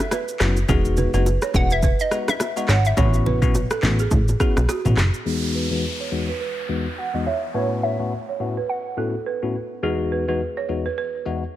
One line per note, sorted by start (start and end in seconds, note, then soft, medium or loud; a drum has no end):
0.00 0.36 E5 medium
0.00 cross-stick loud
0.00 low bongo medium
0.00 shaker medium
0.11 0.30 B4 medium
0.11 cross-stick loud
0.11 high bongo medium
0.11 shaker medium
0.28 shaker medium
0.40 0.65 F#1 loud
0.40 0.57 B3 medium
0.40 0.57 C#4 medium
0.40 0.57 E4 medium
0.40 0.57 F#4 medium
0.40 cross-stick loud
0.40 clap loud
0.40 shaker medium
0.57 shaker medium
0.68 1.07 E1 loud
0.68 1.10 G#3 medium
0.68 1.10 B3 medium
0.68 1.10 D#4 medium
0.68 1.10 F#4 loud
0.68 0.79 G#4 medium
0.68 kick loud
0.68 low conga medium
0.68 shaker medium
0.85 shaker medium
0.97 1.08 B4 medium
0.97 high bongo soft
0.97 low bongo soft
0.97 low conga medium
0.97 shaker medium
1.13 1.38 F#1 medium
1.13 1.26 G#3 medium
1.13 1.26 B3 medium
1.13 1.26 D#4 medium
1.13 1.26 F#4 medium
1.13 1.22 B4 medium
1.13 shaker soft
1.26 high bongo medium
1.26 shaker medium
1.42 1.50 C#5 medium
1.42 cross-stick medium
1.42 shaker medium
1.54 1.93 E1 loud
1.54 1.71 G#3 medium
1.54 1.71 B3 medium
1.54 1.71 D#4 medium
1.54 1.71 F#4 medium
1.54 1.72 F#5 loud
1.54 kick medium
1.54 low bongo medium
1.54 shaker medium
1.70 1.79 B4 medium
1.70 1.85 E5 medium
1.70 shaker medium
1.82 2.02 B4 medium
1.82 kick medium
1.82 low conga medium
1.82 shaker medium
1.99 2.27 D#5 medium
1.99 shaker medium
2.11 2.28 G#3 medium
2.11 2.28 B3 medium
2.11 2.28 D#4 medium
2.11 2.28 F#4 medium
2.11 cross-stick medium
2.11 shaker soft
2.28 2.67 E5 loud
2.28 cross-stick loud
2.28 low bongo medium
2.28 shaker medium
2.40 cross-stick loud
2.40 high bongo medium
2.40 shaker medium
2.56 2.69 G#3 medium
2.56 2.69 B3 medium
2.56 2.69 D#4 medium
2.56 2.69 F#4 medium
2.56 2.69 D#5 medium
2.56 shaker medium
2.69 2.93 G#1 loud
2.69 2.79 C#5 medium
2.69 2.86 F#5 loud
2.69 cross-stick loud
2.69 clap loud
2.69 shaker medium
2.85 4.65 E5 medium
2.85 shaker medium
2.97 3.44 A1 loud
2.97 3.38 B3 medium
2.97 3.38 C#4 medium
2.97 3.38 E4 medium
2.97 3.39 F#4 loud
2.97 3.08 C#5 loud
2.97 kick loud
2.97 low conga medium
2.97 shaker medium
3.14 shaker medium
3.26 3.37 B4 medium
3.26 high bongo medium
3.26 low bongo medium
3.26 low conga medium
3.42 3.67 B1 loud
3.42 3.54 B3 medium
3.42 3.55 C#4 medium
3.42 3.55 E4 medium
3.42 3.55 F#4 medium
3.42 kick medium
3.42 mid tom medium
3.42 shaker soft
3.55 high bongo medium
3.55 shaker medium
3.70 3.79 A4 medium
3.70 cross-stick loud
3.70 shaker medium
3.83 4.07 A1 loud
3.83 4.00 B3 medium
3.83 4.00 C#4 medium
3.83 4.00 E4 medium
3.83 4.00 F#4 medium
3.83 clap loud
3.83 mid tom medium
3.83 low bongo medium
3.99 4.07 G#4 medium
3.99 shaker medium
4.11 4.36 A1 loud
4.11 kick medium
4.11 low conga medium
4.11 shaker medium
4.28 high bongo medium
4.28 shaker medium
4.40 4.57 B3 medium
4.40 4.57 C#4 medium
4.40 4.57 E4 medium
4.40 4.57 F#4 medium
4.40 4.51 G#4 medium
4.40 kick medium
4.40 cross-stick medium
4.40 shaker medium
4.57 4.67 B1 medium
4.57 cross-stick loud
4.57 low bongo medium
4.57 shaker medium
4.69 4.87 F#4 medium
4.69 cross-stick loud
4.69 high bongo medium
4.69 shaker medium
4.85 4.96 A1 medium
4.85 4.98 B3 medium
4.85 4.98 C#4 medium
4.85 4.98 E4 medium
4.85 4.98 F#4 medium
4.85 mid tom loud
4.85 shaker medium
4.97 5.11 F#1 medium
4.97 cross-stick loud
4.97 clap loud
4.97 shaker medium
5.14 shaker medium
5.25 5.67 E2 medium
5.25 5.67 G#3 medium
5.25 5.67 B3 medium
5.25 5.67 D#4 medium
5.25 5.67 F#4 medium
5.25 5.37 G#4 medium
5.25 downlifter medium
5.55 5.65 B4 medium
5.71 5.83 E2 medium
5.71 5.83 G#3 medium
5.71 5.83 B3 medium
5.71 5.83 D#4 medium
5.71 5.84 F#4 medium
5.71 5.79 B4 medium
6.00 6.07 C#5 medium
6.11 6.28 E2 medium
6.11 6.28 G#3 medium
6.11 6.28 B3 medium
6.11 6.28 D#4 medium
6.11 6.29 F#4 medium
6.29 6.36 B4 medium
6.41 6.58 B4 medium
6.69 6.85 E2 medium
6.69 6.85 G#3 medium
6.69 6.86 B3 medium
6.69 6.86 D#4 medium
6.69 6.86 F#4 medium
6.98 7.27 F#5 loud
7.14 7.26 E2 medium
7.14 7.26 G#3 medium
7.14 7.26 B3 medium
7.14 7.26 D#4 medium
7.14 7.26 F#4 medium
7.14 7.22 D#5 medium
7.26 7.37 C#5 medium
7.26 7.56 E5 loud
7.54 7.95 A2 medium
7.54 7.95 B3 medium
7.54 7.96 C#4 medium
7.54 7.96 E4 medium
7.54 7.96 F#4 medium
7.54 7.65 B4 medium
7.54 7.68 C#5 medium
7.83 7.94 C#5 medium
7.83 8.71 E5 loud
7.99 8.12 A2 medium
7.99 8.12 B3 medium
7.99 8.12 C#4 medium
7.99 8.12 E4 medium
7.99 8.12 F#4 medium
8.29 8.36 C#5 medium
8.40 8.57 A2 medium
8.40 8.57 B3 medium
8.40 8.57 C#4 medium
8.40 8.57 E4 medium
8.40 8.57 F#4 medium
8.57 8.65 B4 medium
8.69 9.51 F#5 medium
8.97 9.14 A2 medium
8.97 9.14 B3 medium
8.97 9.14 C#4 medium
8.97 9.14 E4 medium
8.97 9.14 F#4 medium
8.97 9.08 A4 medium
9.26 9.44 B4 medium
9.42 9.55 A2 medium
9.42 9.55 B3 medium
9.42 9.55 C#4 medium
9.42 9.55 E4 medium
9.42 9.55 F#4 medium
9.83 10.24 E2 medium
9.83 10.24 G#3 medium
9.83 10.24 B3 medium
9.83 10.24 D#4 medium
9.83 10.24 F#4 medium
9.83 9.94 G#4 medium
10.12 10.22 B4 medium
10.28 10.40 E2 medium
10.28 10.40 G#3 medium
10.28 10.41 B3 medium
10.28 10.41 D#4 medium
10.28 10.41 F#4 medium
10.28 10.36 B4 medium
10.57 10.65 C#5 medium
10.68 10.85 E2 medium
10.68 10.85 G#3 medium
10.68 10.86 B3 medium
10.68 10.86 D#4 medium
10.68 10.86 F#4 medium
10.86 10.93 B4 medium
10.98 11.16 B4 medium
11.25 11.42 E2 medium
11.25 11.42 G#3 medium
11.25 11.43 B3 medium
11.25 11.43 D#4 medium
11.25 11.43 F#4 medium